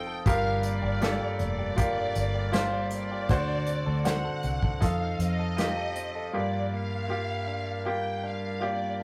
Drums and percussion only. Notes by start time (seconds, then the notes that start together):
0.26 kick, closed hi-hat
0.63 closed hi-hat
1.02 snare, closed hi-hat
1.39 closed hi-hat
1.78 kick, closed hi-hat
2.15 closed hi-hat
2.53 snare, closed hi-hat
2.91 closed hi-hat
3.29 kick, closed hi-hat
3.66 closed hi-hat
4.05 snare, closed hi-hat
4.43 closed hi-hat
4.63 kick
4.82 kick, closed hi-hat
5.20 closed hi-hat
5.58 snare, closed hi-hat
5.96 closed hi-hat